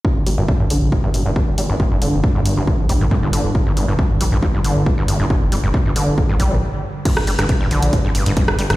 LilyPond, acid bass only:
\new Staff \with { instrumentName = "Acid bass" } { \clef bass \time 4/4 \key g \minor \tempo 4 = 137 g,16 r16 g16 g,16 bes,16 g,16 d8 g,16 g,16 g,16 g,16 g,16 r16 g16 g,16 | bes,16 g,16 d8 g,16 g,16 g,16 g,16 g,16 r16 g16 g,16 bes,16 g,16 d8 | g,16 g,16 g,16 g,16 g,16 r16 g16 g,16 bes,16 g,16 d8 g,16 g,16 g,16 g,16 | g,16 r16 g16 g,16 bes,16 g,16 d8 g,16 g,16 g16 g,16 r4 |
g,16 r16 g16 g,16 bes,16 g,16 d8 g,16 g,16 g,16 g,16 g,16 r16 g16 g,16 | }